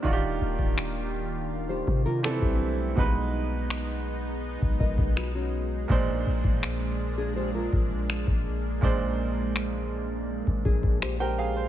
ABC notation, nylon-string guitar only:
X:1
M:4/4
L:1/16
Q:1/4=82
K:Bbmix
V:1 name="Nylon-string guitar"
z8 z [Gc]2 [FB] [=E=A] [DG]3 | z8 z2 [B^d]2 [^F=B] [_DF]3 | z6 z [DA] [Gc] [FB]6 z | z8 z2 [DA]2 [Gc] [Gc]3 |]